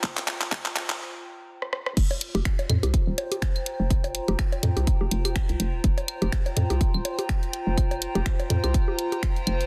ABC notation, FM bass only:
X:1
M:4/4
L:1/16
Q:"Swing 16ths" 1/4=124
K:Cphr
V:1 name="FM bass" clef=bass
z16 | F,,, z2 F,,, z2 F,, C,, z E,,, z4 z F,,,- | F,,,2 z F,,, z2 F,, C,, z F,,, F,,,3 C,, F,,, E,,, | F,,, z2 F,,, z2 F,, C,, z E,,, z4 z F,,,- |
F,,,2 z F,,, z2 F,, C,, z6 F,,, z |]